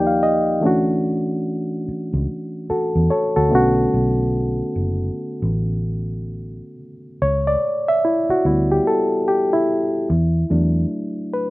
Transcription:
Already playing: D#2 F3 A#3 D#4 G4 D5 G5
0.07 F5
0.23 D#5
0.61 E3 A3 C#4
0.65 D2 D4 F#4
1.88 muted fingered electric bass stroke
2.13 C#2
2.70 F#4 A4, muted fingered electric bass stroke
2.95 E2
3.10 A4 C#5
3.36 D2 F#4 A4
3.49 B1 D3 A3 B3
3.53 C#4 F#4
3.94 B1
4.76 F#1
5.42 A1
7.22 C#2 C#5
7.47 D5
7.88 E5
8.05 E4
8.29 F#4, muted fingered electric bass stroke
8.45 D2 G3 B3 E4
8.72 G4
8.87 A4
9.28 G4
9.53 E4
10.10 E2
10.50 E2 F#3 A3 D4
11.34 B4

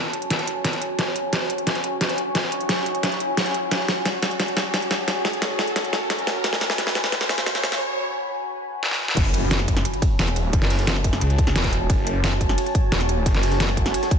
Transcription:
Already playing: F#4 C#5 G#5 A5, riser
0.13 closed hi-hat
0.22 closed hi-hat
0.30 snare, closed hi-hat
0.39 closed hi-hat
0.47 closed hi-hat
0.65 snare, closed hi-hat
0.73 closed hi-hat
0.82 closed hi-hat
0.99 C#6, snare, closed hi-hat
1.16 closed hi-hat
1.33 snare, closed hi-hat
1.50 closed hi-hat
1.58 closed hi-hat
1.67 snare, closed hi-hat
1.75 closed hi-hat
1.84 closed hi-hat
2.01 snare, closed hi-hat
2.09 closed hi-hat
2.18 closed hi-hat
2.35 snare, closed hi-hat
2.52 closed hi-hat
2.61 closed hi-hat
2.69 snare, closed hi-hat
2.86 closed hi-hat
2.95 closed hi-hat
3.03 snare, closed hi-hat
3.12 closed hi-hat
3.20 closed hi-hat
3.37 snare, closed hi-hat
3.46 closed hi-hat
3.54 closed hi-hat
3.71 A5, snare, closed hi-hat
3.88 snare, closed hi-hat
4.06 snare, closed hi-hat
4.23 snare, closed hi-hat
4.31 closed hi-hat
4.40 snare, closed hi-hat
4.48 closed hi-hat
4.57 snare, closed hi-hat
4.74 snare, closed hi-hat
4.82 closed hi-hat
4.91 snare, closed hi-hat
5.08 snare, closed hi-hat
5.25 snare, closed hi-hat
5.33 closed hi-hat
5.42 snare, closed hi-hat
5.59 snare, closed hi-hat
5.67 closed hi-hat
5.76 snare, closed hi-hat
5.85 closed hi-hat
5.93 snare, closed hi-hat
6.10 snare, closed hi-hat
6.19 closed hi-hat
6.27 snare, closed hi-hat
6.44 B5, snare, closed hi-hat
6.53 snare
6.61 snare, closed hi-hat
6.70 snare
6.78 snare, closed hi-hat
6.87 snare
6.95 snare, closed hi-hat
7.04 snare, closed hi-hat
7.12 snare, closed hi-hat
7.21 snare, closed hi-hat
7.29 snare, closed hi-hat
7.38 snare
7.46 snare, closed hi-hat
7.55 snare, closed hi-hat
7.64 snare, closed hi-hat
7.72 snare
8.83 snare
8.91 snare
9.08 snare
9.17 F#1 F#4 C#5 G#5 A5, kick, closed hi-hat, crash, ride, impact
9.34 closed hi-hat, ride
9.51 snare, closed hi-hat, ride
9.60 snare
9.68 F#1, kick, closed hi-hat, ride
9.77 snare, closed hi-hat
9.85 closed hi-hat, ride
9.94 closed hi-hat
10.02 kick, closed hi-hat, ride
10.19 E1, snare, closed hi-hat, ride
10.28 snare, closed hi-hat
10.36 closed hi-hat, ride
10.53 F#1, kick, closed hi-hat, ride
10.62 snare, ride
10.70 closed hi-hat, open hi-hat
10.79 snare, closed hi-hat
10.87 snare, closed hi-hat, ride
10.96 snare
11.04 F#1, kick, closed hi-hat, ride
11.13 snare, closed hi-hat
11.21 C#2, closed hi-hat, ride
11.30 closed hi-hat
11.38 kick, closed hi-hat, ride
11.47 snare, ride
11.56 E1, snare, closed hi-hat
11.64 kick, closed hi-hat, ride
11.73 closed hi-hat, ride
11.90 F#1, kick, closed hi-hat, ride
12.07 closed hi-hat, ride
12.24 snare, closed hi-hat, ride
12.32 snare
12.41 F#1, kick, closed hi-hat, ride
12.49 snare, closed hi-hat
12.58 closed hi-hat, ride
12.66 closed hi-hat
12.75 kick, closed hi-hat, ride
12.92 E1, snare, closed hi-hat, ride
13.01 snare, closed hi-hat
13.09 closed hi-hat, ride
13.26 F#1, kick, closed hi-hat, ride
13.35 snare, ride
13.43 closed hi-hat, open hi-hat
13.52 snare, closed hi-hat
13.60 snare, closed hi-hat, ride
13.69 snare
13.77 F#1, kick, closed hi-hat, ride
13.86 snare, closed hi-hat
13.94 closed hi-hat, ride
14.03 snare, closed hi-hat
14.11 kick, closed hi-hat, ride

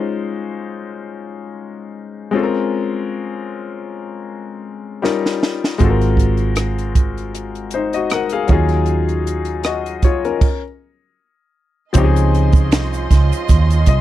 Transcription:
Already playing: G#3 C#4 D#4 F4 C5
2.31 G#3 C4 C#4 F4
2.37 A4
2.43 A#4
5.02 G3 C#4 D#4 F4 A#4, snare
5.26 snare
5.43 snare
5.64 snare
5.78 G#1 G#3 C4 F4, kick, closed hi-hat
5.82 F#4 A4
5.90 A#4
6.01 closed hi-hat
6.17 kick, closed hi-hat
6.37 closed hi-hat
6.56 cross-stick, closed hi-hat
6.78 closed hi-hat
6.95 kick, closed hi-hat
7.18 closed hi-hat
7.35 closed hi-hat
7.55 closed hi-hat
7.71 C5, closed hi-hat
7.75 D#4
7.93 F#4 D#5, closed hi-hat
8.10 A#4 F#5, cross-stick, closed hi-hat
8.29 F5, closed hi-hat
8.33 G#4
8.47 D#2 F#3 C#4 D#4 F4, kick, closed hi-hat
8.52 G#4
8.69 cross-stick, closed hi-hat
8.86 closed hi-hat
9.09 closed hi-hat
9.27 closed hi-hat
9.45 closed hi-hat
9.63 F#4 D#5, cross-stick, closed hi-hat
9.86 closed hi-hat
10.02 F4 C#5, kick, closed hi-hat
10.25 C#4 A#4, closed hi-hat
10.41 kick, crash
11.93 C#2 F3 C4 C#4 D#4 F4 D#5 C6, kick, closed hi-hat, shaker
11.98 G4
12.04 G#4
12.16 closed hi-hat, shaker
12.35 closed hi-hat
12.52 kick, closed hi-hat, shaker
12.71 C2, finger snap, snare, closed hi-hat, shaker
12.93 closed hi-hat, shaker
13.11 C#2, kick, snare, closed hi-hat, shaker
13.33 closed hi-hat, shaker
13.49 D#2, kick, closed hi-hat, shaker
13.70 closed hi-hat, shaker
13.86 C2 D#5, kick, closed hi-hat

